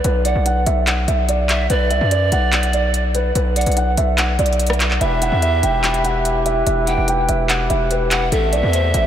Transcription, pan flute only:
0.25 0.45 F#5 medium
1.49 1.69 E5 medium
1.70 3.31 D5 loud
3.56 3.76 F#5 medium
5.01 6.62 E5 loud
6.87 7.07 G5 medium
8.11 8.31 F#5 medium
8.32 9.07 E5 loud

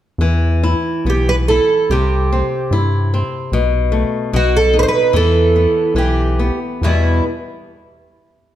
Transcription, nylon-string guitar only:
0.21 1.87 E3 soft
0.64 1.05 E4 soft
1.06 1.48 B3 soft
1.50 1.90 E4 soft
1.92 3.49 C3 medium
2.33 2.71 C4 soft
2.73 3.11 E4 soft
3.14 3.52 C4 soft
3.53 4.31 B2 medium
3.92 4.32 A3 soft
4.33 5.11 B2 medium
4.73 5.12 D#4 soft
5.13 5.95 E3 medium
5.56 5.96 B3 soft
5.96 6.38 E3 soft
6.39 6.81 B3 soft
6.83 7.23 E2 soft
6.83 7.23 B2 soft
6.83 7.23 E3 soft
6.83 7.24 G3 soft
6.83 7.24 B3 soft

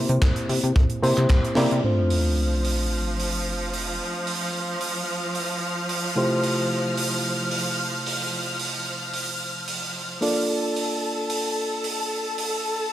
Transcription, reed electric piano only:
0.00 0.99 A#3 medium
0.00 0.99 C4 medium
0.00 1.00 E4 medium
0.00 1.00 G4 medium
0.00 1.00 C5 medium
1.02 1.54 A#3 medium
1.02 1.54 C4 medium
1.02 1.54 E4 medium
1.02 1.54 G4 medium
1.02 1.54 C5 loud
1.56 1.81 A#3 medium
1.56 1.81 C4 medium
1.56 1.81 E4 medium
1.56 1.81 G4 medium
1.56 1.81 D5 loud
1.83 6.13 A3 medium
1.83 6.13 C4 medium
1.83 6.14 D4 medium
1.83 6.14 F4 medium
1.83 6.14 C5 medium
6.15 10.18 C3 medium
6.15 10.19 A3 medium
6.15 10.19 E4 medium
6.15 10.19 F4 medium
6.15 10.19 G4 medium
6.15 10.19 C5 medium
10.21 12.93 A#3 medium
10.21 12.93 D4 medium
10.21 12.93 F4 medium
10.21 12.93 A4 medium
10.21 12.93 D5 medium

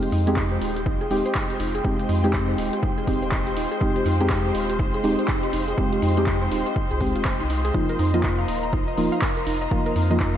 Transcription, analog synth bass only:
0.12 0.58 F2 loud
0.61 0.88 D#1 medium
0.86 0.98 G#1 medium
1.11 1.22 D#1 medium
1.60 1.80 F1 medium
1.84 2.05 F1 medium
2.09 2.55 F2 loud
2.58 2.70 D#1 medium
3.07 3.66 D#1 medium
3.81 4.02 F1 medium
4.06 4.52 F2 loud
4.55 4.81 D#1 medium
4.79 4.91 G#1 medium
5.04 5.16 D#1 medium
5.53 5.74 F1 medium
5.78 5.98 F1 medium
6.02 6.48 F2 loud
6.51 6.63 D#1 medium
6.91 7.17 C2 loud
7.16 7.42 D#1 medium
7.40 7.71 C2 loud
7.74 7.95 F1 medium
7.99 8.45 F2 loud
8.48 8.74 D#1 medium
8.73 8.85 G#1 medium
8.97 9.09 D#1 medium
9.47 9.67 F1 medium
9.71 9.92 F1 medium
9.96 10.37 F2 loud

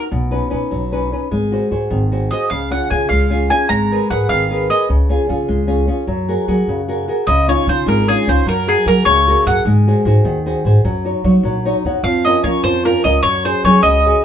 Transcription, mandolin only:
2.31 2.49 D#5 medium
2.50 2.70 F5 medium
2.72 2.90 F#5 medium
2.90 3.08 G#5 medium
3.09 3.50 F5 medium
3.50 3.68 G#5 medium
3.69 4.10 A#5 medium
4.11 4.29 F#5 medium
4.29 4.67 F5 medium
4.70 4.88 D#5 medium
7.27 7.47 D#5 medium
7.49 7.67 C#5 medium
7.69 7.86 C5 medium
7.88 8.08 A#4 medium
8.08 8.28 G#4 medium
8.29 8.46 C5 medium
8.48 8.69 A#4 medium
8.68 8.86 G#4 medium
8.88 9.05 A#4 medium
9.05 9.43 C#5 medium
9.47 9.64 F#5 medium
12.04 12.24 F5 medium
12.25 12.43 D#5 medium
12.44 12.62 C#5 medium
12.64 12.85 C5 medium
12.85 13.03 A#4 medium
13.04 13.22 D#5 medium
13.23 13.43 C#5 medium
13.45 13.63 C5 medium
13.65 13.82 C#5 medium
13.83 14.21 D#5 medium

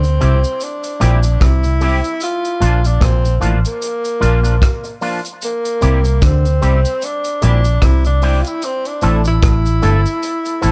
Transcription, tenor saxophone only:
0.00 0.65 C4 medium
0.64 1.45 D4 medium
1.43 2.22 E4 loud
2.24 2.88 F4 loud
2.86 3.05 D4 medium
3.04 3.37 C4 medium
3.67 4.99 A#3 medium
5.45 6.26 A#3 medium
6.25 7.06 C4 medium
7.05 7.44 D4 medium
7.44 7.86 D4 loud
7.84 8.06 E4 loud
8.07 8.43 D4 loud
8.41 8.49 F4 medium
8.47 8.66 E4 medium
8.65 8.89 C4 medium
8.87 9.26 D4 medium
9.28 10.72 E4 loud

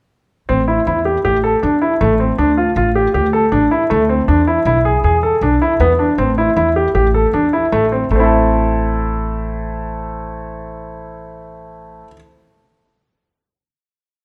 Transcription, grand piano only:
0.49 0.60 C4 medium
0.68 0.79 E4 medium
0.87 0.98 E4 medium
1.05 1.17 G4 medium
1.25 1.36 G4 medium
1.44 1.55 A4 medium
1.63 1.74 D4 medium
1.82 1.93 E4 medium
2.01 2.12 A3 medium
2.20 2.31 C4 medium
2.38 2.50 D4 medium
2.57 2.69 F4 medium
2.77 2.88 F4 medium
2.96 3.07 G4 medium
3.14 3.26 G4 medium
3.33 3.44 A4 medium
3.52 3.63 D4 medium
3.71 3.82 E4 medium
3.90 4.01 A3 medium
4.09 4.20 C4 medium
4.28 4.39 D4 medium
4.47 4.58 E4 medium
4.66 4.77 E4 medium
4.85 4.96 G#4 medium
5.04 5.15 G#4 medium
5.23 5.34 A4 medium
5.43 5.54 D4 medium
5.62 5.73 E4 medium
5.80 5.92 B3 medium
5.99 6.10 D4 medium
6.18 6.30 C4 medium
6.38 6.49 E4 medium
6.56 6.68 E4 medium
6.76 6.87 G4 medium
6.95 7.06 G4 medium
7.14 7.26 A4 medium
7.34 7.45 D4 medium
7.53 7.64 E4 medium
7.72 7.84 A3 medium
7.92 8.03 C4 medium
8.11 12.03 A3 medium
8.16 12.07 C4 medium
8.16 12.11 E4 medium
8.23 12.15 A4 medium

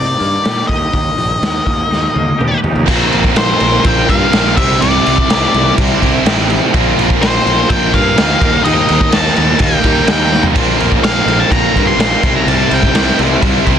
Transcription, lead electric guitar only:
0.00 0.67 D5 medium
0.68 2.59 D#5 medium
3.38 3.87 C5 medium
3.86 4.09 G5 loud
4.10 4.56 F5 medium
4.57 4.82 E5 loud
4.81 5.73 D5 medium
7.22 7.71 C5 medium
7.69 7.91 G5 loud
7.94 8.61 F5 loud
8.64 9.14 D#5 loud
9.13 9.57 A5 loud
9.63 10.06 G5 loud
10.10 10.42 G5 medium
11.04 11.41 F5 medium
11.40 11.51 A5 medium
11.52 11.85 A#5 loud
11.87 11.99 C6 medium
12.00 12.36 C6 loud
12.36 12.48 A#5 medium
12.48 12.72 A5 loud
12.74 13.17 G5 medium

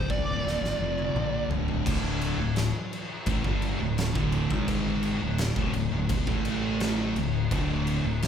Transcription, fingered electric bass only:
0.10 0.26 C2 medium
0.27 0.44 D1 loud
0.44 0.61 D#1 loud
0.61 0.77 G#1 loud
0.78 1.12 F1 medium
1.14 1.48 A#1 loud
1.48 1.83 D1 medium
1.86 2.36 D1 medium
2.37 2.71 D1 medium
3.26 3.44 A1 loud
3.45 3.78 G1 medium
3.80 4.13 D1 medium
4.16 4.49 D1 loud
4.51 5.18 G#1 medium
5.21 5.54 D1 medium
5.56 5.73 D1 loud
5.74 5.91 D1 medium
5.92 6.09 D1 medium
6.09 6.26 D1 medium
6.27 7.12 A1 medium
7.16 7.49 D1 medium
7.51 8.01 D1 medium
8.04 8.28 D1 medium

